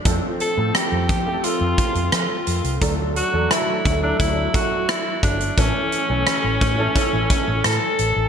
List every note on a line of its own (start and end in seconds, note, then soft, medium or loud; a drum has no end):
0.04 0.18 F2 loud
0.04 0.47 F3 medium
0.04 0.47 A3 medium
0.04 0.47 C4 medium
0.04 0.47 A4 medium
0.04 kick loud
0.04 closed hi-hat medium
0.40 0.73 A4 loud
0.40 closed hi-hat medium
0.57 0.70 A2 medium
0.57 1.13 F3 medium
0.57 1.13 A3 medium
0.57 1.13 C4 medium
0.57 1.13 A4 medium
0.75 1.46 G4 medium
0.75 cross-stick loud
0.75 closed hi-hat medium
0.92 1.11 F2 medium
1.09 1.35 F3 medium
1.09 kick medium
1.09 closed hi-hat medium
1.25 2.37 F3 medium
1.25 2.37 A3 medium
1.25 2.38 C4 medium
1.25 1.33 G4 medium
1.33 2.41 A4 medium
1.44 2.13 F4 medium
1.44 closed hi-hat medium
1.61 1.74 F2 medium
1.78 kick loud
1.78 closed hi-hat medium
1.95 2.08 F2 medium
1.95 closed hi-hat soft
2.12 2.26 F3 medium
2.12 2.78 F4 medium
2.12 cross-stick loud
2.12 closed hi-hat medium
2.47 2.60 F2 medium
2.47 closed hi-hat medium
2.64 2.77 C2 medium
2.64 closed hi-hat medium
2.81 3.20 D2 medium
2.81 3.23 F#3 medium
2.81 3.23 A3 medium
2.81 3.23 D4 medium
2.81 3.23 A4 medium
2.81 kick medium
2.81 closed hi-hat medium
3.16 3.52 F#4 medium
3.16 closed hi-hat medium
3.32 3.46 E2 medium
3.32 3.88 F#3 medium
3.32 3.89 A3 medium
3.32 3.89 D4 medium
3.32 3.89 A4 medium
3.51 4.02 E4 medium
3.51 cross-stick loud
3.51 closed hi-hat medium
3.85 4.11 D2 medium
3.85 kick medium
3.85 closed hi-hat medium
4.02 5.13 F#3 medium
4.02 5.13 A3 medium
4.02 5.14 D4 medium
4.02 4.19 D4 medium
4.02 5.14 A4 medium
4.20 4.46 D2 medium
4.20 4.56 E4 medium
4.20 kick medium
4.20 closed hi-hat medium
4.54 4.91 F#4 loud
4.54 kick medium
4.54 closed hi-hat medium
4.89 5.23 E4 medium
4.89 cross-stick loud
4.89 closed hi-hat medium
5.23 5.49 G1 medium
5.23 5.60 D4 medium
5.23 kick medium
5.23 closed hi-hat medium
5.41 closed hi-hat soft
5.57 5.70 A1 medium
5.57 5.99 E3 medium
5.57 5.99 A3 medium
5.57 5.99 C#4 medium
5.57 7.64 C#4 medium
5.57 5.99 A4 medium
5.57 kick medium
5.57 closed hi-hat medium
5.92 closed hi-hat medium
6.09 6.22 B1 medium
6.09 6.64 E3 medium
6.09 6.65 A3 medium
6.09 6.65 C#4 medium
6.09 6.65 A4 medium
6.27 cross-stick loud
6.27 closed hi-hat medium
6.44 6.57 A1 medium
6.61 6.87 A2 medium
6.61 kick medium
6.61 closed hi-hat medium
6.78 7.89 E3 medium
6.78 7.89 A3 medium
6.78 7.90 C#4 medium
6.78 7.90 A4 medium
6.96 kick medium
6.96 closed hi-hat medium
7.13 7.26 A1 medium
7.30 kick medium
7.30 closed hi-hat medium
7.48 7.60 A1 medium
7.64 7.78 A2 medium
7.64 8.29 A4 loud
7.64 cross-stick loud
7.64 closed hi-hat medium
7.99 8.12 A1 medium
7.99 closed hi-hat medium
8.16 8.29 A1 medium